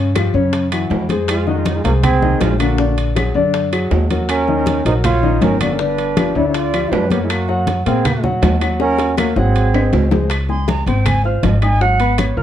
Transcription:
Already playing: upright bass G2
0.15 grand piano F3 F4 G4, high bongo, high conga, high timbale, low timbale, claves
0.34 upright bass F#2, grand piano C#3 C#4 C#5, high conga
0.53 high bongo, high conga, high timbale
0.72 grand piano E3 E4 F#4, high bongo, high conga, high timbale, claves
0.90 upright bass F2, high bongo, low bongo, high conga, low timbale
1.09 grand piano G#3 G#4 C5, high bongo, high conga, high timbale
1.28 trombone G#3, flute F4, high bongo, high conga, high timbale, claves
1.47 grand piano D#3 D#4 D#5, trombone A#3, flute F#4, high bongo, high conga
1.57 trombone G#3, flute F4
1.65 trombone F#3, flute D#4, high bongo, high conga, high timbale, low timbale
1.76 trombone G#3, flute F4
1.84 upright bass C2, grand piano G#3 G#4 C5, trombone A#3, flute F#4, high conga, high timbale
2.03 trombone C4, flute G#4, high bongo, high conga, low conga, high timbale, claves
2.22 grand piano D#3 D#4 D#5, high bongo, high conga, low conga
2.41 upright bass A#1, trombone G#3, flute F4, high bongo, low bongo, high conga, high timbale, low timbale
2.59 grand piano D3 D4 D5, trombone A#3, flute F#4, high bongo, high timbale, claves
2.78 grand piano D3 D4 D5, high bongo, high conga
2.98 high bongo, high conga, high timbale
3.15 grand piano F#3 F#4 G#4, high bongo, high conga, high timbale, low timbale, claves
3.34 upright bass F#2, grand piano D3 D4 D5, high conga
3.54 high bongo, high conga, high timbale
3.72 grand piano F#3 F#4 G#4, high bongo, high conga, high timbale, claves
3.91 upright bass D#2, high bongo, low bongo, high conga, low timbale
4.10 grand piano F#3 F#4 A#4, high bongo, high conga, high timbale
4.29 trombone C#4, flute A#4, high bongo, high conga, high timbale, claves
4.48 grand piano D#3 D#4 D#5, high bongo, high conga
4.66 high bongo, high conga, high timbale, low timbale
4.85 upright bass A#1, grand piano F#3 F#4 A#4, trombone D#4, flute C5, high conga, high timbale
5.04 trombone F4, flute C#5, high bongo, high conga, low conga, high timbale, claves
5.23 grand piano D#3 D#4 D#5, high bongo, high conga
5.41 upright bass G1, trombone C#4, flute A#4, high bongo, low bongo, high conga, high timbale, low timbale
5.61 grand piano D3 D4 D5, trombone A#3, flute F#4, high bongo, high conga, high timbale, claves
5.73 trombone C#4, flute A#4
5.79 grand piano D3 D4 D5, trombone D4, flute B4, high bongo
5.98 high bongo, high conga, high timbale
6.17 grand piano F3 F4 G4, high bongo, high conga, high timbale, low timbale, claves
6.35 upright bass D2, grand piano D3 D4 D5, trombone E4, flute C#5, high conga
6.47 trombone E4, flute C#5
6.54 trombone F4, flute D5, high bongo, high conga, high timbale
6.74 grand piano F3 F4 G4, high bongo, high conga, high timbale, claves
6.92 upright bass F#2, trombone D4, flute B4, high bongo, low bongo, high conga, low timbale
7.10 grand piano A#3 A#4 C#5, trombone B3, flute G4, high bongo, high conga, high timbale
7.23 trombone G#3, flute E4
7.29 trombone A#3, flute F#4, high bongo, high conga, high timbale, claves
7.48 grand piano F#3 F#4 F#5, high bongo, high conga
7.67 high bongo, high conga, high timbale, low timbale
7.86 upright bass A#2, grand piano A#3 A#4 F5, trombone C4, flute G#4, high conga, high timbale
8.05 high bongo, high conga, low conga, high timbale, claves
8.24 grand piano F#3 F#4 F#5, high bongo, high conga, low conga
8.42 upright bass D#2, high bongo, low bongo, high conga, high timbale, low timbale
8.61 grand piano F#3 F#4 F#5, high bongo, high timbale, claves
8.80 grand piano F#3 F#4 F#5, trombone C#4, flute A#4, high bongo, high conga
8.99 high bongo, high conga, high timbale
9.18 grand piano A#3 A#4 C#5, trombone A#3, flute F#4, high bongo, high conga, high timbale, low timbale, claves
9.36 upright bass G#1, grand piano F#3 F#4 F#5, trombone C4, flute G#4, low bongo, high conga
9.56 high conga, high timbale
9.74 grand piano C4 C5 D#5, high conga, high timbale, claves
9.93 upright bass C#2, low bongo, high conga, low timbale
10.11 grand piano G#3 G#4 C5, low bongo, high conga, low timbale
10.30 high bongo, high conga, high timbale, claves
10.49 grand piano G#3 G#4 G#5, flute C6, high bongo, high conga
10.68 flute A#5, high bongo, high conga, high timbale, low timbale
10.86 upright bass G#1, grand piano C4 C5 C6, flute G5, high conga, high timbale
11.06 flute G#5, high bongo, high conga, low conga, high timbale, claves
11.24 grand piano F4 F5 F6, flute C5, high bongo, high conga
11.43 upright bass G#1, flute D#5, high bongo, low bongo, high conga, high timbale, low timbale
11.62 grand piano D#4 D#5 D#6, flute G#5, high bongo, high timbale, claves
11.81 grand piano F#3 F#4 F#5, flute F#5, high bongo, high conga
11.99 grand piano B3 B4 B5, high bongo, high conga, high timbale
12.18 flute C#5, high bongo, high conga, high timbale, low timbale, claves
12.37 upright bass C#2, grand piano F4 F5 F6, flute A#4, high conga

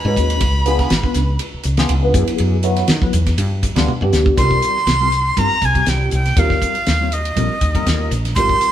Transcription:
Already playing: flute B5
0.05 fretless electric bass G#2, tine electric piano G#3 C#4 F#4 B4
0.17 fretless electric bass D#2, kick, hi-hat pedal, ride
0.30 ride
0.41 fretless electric bass C#2, kick, ride
0.66 tine electric piano B3 D4 F4 G#4, hi-hat pedal, ride
0.79 kick, snare, ride
0.90 fretless electric bass G#1, snare, ride
1.03 tine electric piano B3 D4 F4 B4, kick
1.14 fretless electric bass C#2, snare, hi-hat pedal, ride
1.29 tine electric piano F4 G#4
1.39 tine electric piano F4 B4, ride
1.54 muted fretless electric bass stroke
1.63 fretless electric bass C#2, hi-hat pedal, ride
1.77 tine electric piano B3 D4 F4 G#4, snare, ride
1.89 fretless electric bass C#2, ride
2.02 tine electric piano B3 D4 F4 B4
2.13 fretless electric bass F#2, tine electric piano F#3 B3 E4 G#4, kick, hi-hat pedal, ride
2.28 muted fretless electric bass stroke, ride
2.38 fretless electric bass F#2, ride
2.63 tine electric piano F#3 B3 E4 F#4, hi-hat pedal, ride
2.76 snare, ride
2.88 fretless electric bass D#3, snare, ride
3.01 tine electric piano F#3 B3 E4 B4, muted fretless electric bass stroke, kick
3.13 fretless electric bass E2, hi-hat pedal, ride
3.26 tine electric piano E4 G#4, kick, snare, ride
3.38 fretless electric bass G2, tine electric piano D4 F4, ride
3.63 kick, hi-hat pedal, ride
3.76 fretless electric bass D2, tine electric piano G3 B3 D4 F4, snare, ride
3.88 high tom
4.01 fretless electric bass G2, tine electric piano G3 B3 D4 G4, mid tom
4.13 fretless electric bass D2, snare, hi-hat pedal
4.26 kick
4.36 fretless electric bass C2, tine electric piano G3 C4 F4 A#4, flute C6, kick, hi-hat pedal, ride
4.51 kick
4.62 hi-hat pedal, ride
4.76 snare
4.87 fretless electric bass C2, snare, hi-hat pedal, ride
5.00 tine electric piano G3 C4 F4 A#4
5.12 tine electric piano A#4, hi-hat pedal, ride
5.37 fretless electric bass G2, tine electric piano G3 C4 F4 A#4, flute A#5, kick, hi-hat pedal, ride
5.62 fretless electric bass C2, tine electric piano F4 G4, flute G#5, kick, hi-hat pedal, ride
5.74 tine electric piano G3 C4 F4 G4, kick, ride
5.86 fretless electric bass C2, flute G5, snare, hi-hat pedal, ride
6.11 fretless electric bass C2, flute G5, hi-hat pedal, ride
6.25 snare, ride
6.36 fretless electric bass D#2, tine electric piano G3 C4 F4 A#4, flute F5, kick, hi-hat pedal, ride
6.50 kick, snare
6.62 kick, hi-hat pedal, ride
6.75 ride
6.86 fretless electric bass D#2, snare, hi-hat pedal, ride
7.00 tine electric piano G3 C4 F4 C#5
7.12 tine electric piano F4 G4, flute D#5, hi-hat pedal, ride
7.25 ride
7.36 fretless electric bass A#1, tine electric piano G3 C4 F4 A#4, kick, hi-hat pedal, ride
7.61 fretless electric bass D#2, tine electric piano F4 A#4, kick, hi-hat pedal, ride
7.74 tine electric piano G3 C4 F4 A#4, kick, ride
7.86 fretless electric bass D#2, snare, hi-hat pedal, ride
8.11 fretless electric bass A#1, hi-hat pedal, ride
8.25 snare, ride
8.35 fretless electric bass G#1, tine electric piano G3 C4 F4 A#4, flute C6, kick, hi-hat pedal, ride
8.49 kick
8.61 hi-hat pedal, ride

